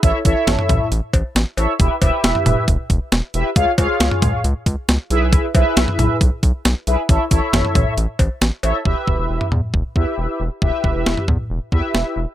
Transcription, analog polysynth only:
X:1
M:4/4
L:1/8
Q:1/4=136
K:Edor
V:1 name="Analog polysynth"
[EAce] [EAce]3 z3 [EAce] | [EGBe] [EGBe]3 z3 [EGBe] | [^E^Gc^e] [EGce]3 z3 [=EGB=e]- | [E^GBe] [EGBe]3 z3 [EGBe] |
[EAce] [EAce]3 z3 [EAce] | [EGBe]3 z2 [EGBe]2 z | [EGBe]3 z2 [EGBe]2 z |]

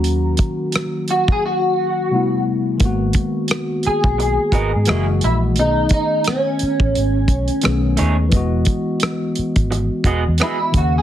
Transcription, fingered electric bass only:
X:1
M:4/4
L:1/16
Q:"Swing 16ths" 1/4=87
K:G#m
V:1 name="Fingered electric bass" clef=bass
D,,2 z12 z2 | G,,,2 z4 z B,,,2 z G,,, G,, F,,,2 A,,,2 | B,,,2 z4 z =A,,, G,,,2 B,,, z B,,,2 D,,2 | E,,,2 z4 z G,,,2 z E,,, E,, z2 D,,2 |]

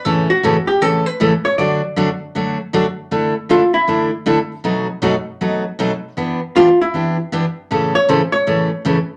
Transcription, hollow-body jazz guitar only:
X:1
M:4/4
L:1/8
Q:"Swing" 1/4=157
K:D
V:1 name="Hollow-body jazz guitar"
A F2 G A B2 c | d6- d z | z2 =F E2 z3 | z8 |
z2 =F E2 z3 | z c =c ^c3 z2 |]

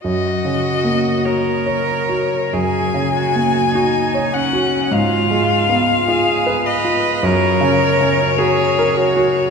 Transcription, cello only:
X:1
M:4/4
L:1/8
Q:1/4=51
K:F#
V:1 name="Cello"
F2 A2 G F D C | =F2 _A _c ^A2 G ^F |]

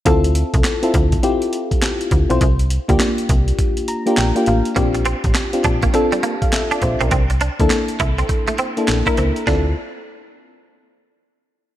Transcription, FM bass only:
X:1
M:4/4
L:1/16
Q:"Swing 16ths" 1/4=102
K:Dm
V:1 name="FM bass" clef=bass
D,,3 C,, z2 D,,2 z6 D,, =B,,, | C,,3 D,, z2 C,,2 z4 B,,, z A,,, z | B,,,3 A,,, z2 B,,,2 z6 B,,, =B,,, | C,,3 D,, z2 C,,2 z4 B,,, z ^C,, z |
D,,2 z12 z2 |]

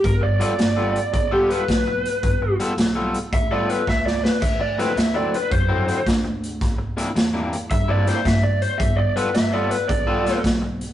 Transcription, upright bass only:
X:1
M:4/4
L:1/8
Q:"Swing" 1/4=110
K:Gmix
V:1 name="Upright bass" clef=bass
G,,,2 G,,,2 B,,,2 B,,,2 | G,,,2 B,,,2 D,,2 ^C,,2 | D,,2 D,,2 ^F,,2 D,,2 | C,,2 E,,2 G,,2 G,,2 |
G,,,2 G,,,2 B,,,2 B,,,2 |]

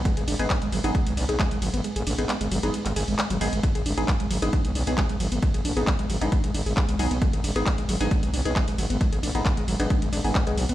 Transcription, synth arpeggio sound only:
X:1
M:4/4
L:1/16
Q:1/4=134
K:none
V:1 name="Synth arpeggio sound" clef=bass
^G, ^G D B, G, G, ^F, D G, G, D G G, G, F, B, | ^G, ^G D B, G, G, ^F, D G, G, G G, G, F, B, G, | ^G, ^G D B, G, G, ^F, D G, G, D G G, G, F, B, | ^G, ^G D B, G, G, ^F, D G, G, D G G, G, F, B, |
^G, ^G D B, G, G, ^F, D G, G, D G G, G, F, B, | ^G, ^G D B, G, G, ^F, D G, G, D G G, G, F, B, |]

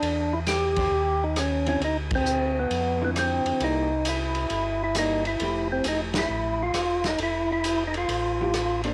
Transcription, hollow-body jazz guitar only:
X:1
M:4/4
L:1/8
Q:"Swing" 1/4=134
K:F
V:1 name="Hollow-body jazz guitar"
z3 [_E,_DGc] z3 [=D,F,C=E] | z4 z [D,F,CE]3 | [G,B,E] z4 z [G,B,E] z | [F,A,EG]4- [F,A,EG] z3 |
z4 z [F,A,EG] z [B,DAc] |]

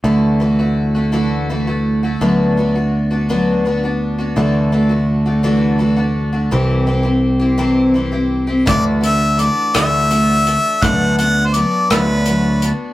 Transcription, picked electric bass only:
X:1
M:6/8
L:1/8
Q:3/8=56
K:Dmix
V:1 name="Picked electric bass" clef=bass
D,,6 | D,,6 | D,,6 | C,,6 |
D,,3 D,,3 | D,,3 D,,3 |]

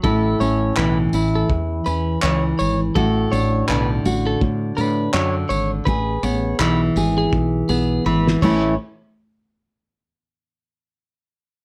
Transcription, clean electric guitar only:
X:1
M:4/4
L:1/16
Q:"Swing 16ths" 1/4=82
K:A
V:1 name="Clean electric guitar"
A2 c2 B z2 A z2 B2 c z c z | A2 c2 B z2 A z2 B2 c z c z | B2 c2 B z2 G z2 G2 B z c2 | z16 |]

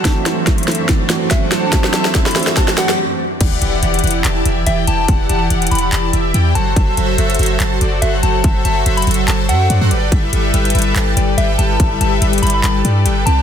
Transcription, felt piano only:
X:1
M:4/4
L:1/8
Q:"Swing 16ths" 1/4=143
K:G
V:1 name="Felt piano"
[E,A,CDF]3 [E,A,CDA] z [E,A,CDF]3 | [E,A,CDF]3 [E,A,CDF]3 z2 | z8 | z8 |
z8 | z8 | z8 | z8 |]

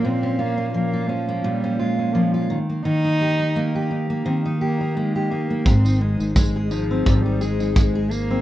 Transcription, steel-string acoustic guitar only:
X:1
M:4/4
L:1/16
Q:"Swing 16ths" 1/4=86
K:Ab
V:1 name="Steel-string acoustic guitar"
[B,,B,] D F D F, F D B, B,, D F D F, F E, B, | E, E G E B, G E B, E, E G E B, G E B, | A,, E A E A, A E C A,, E A E A, A E C |]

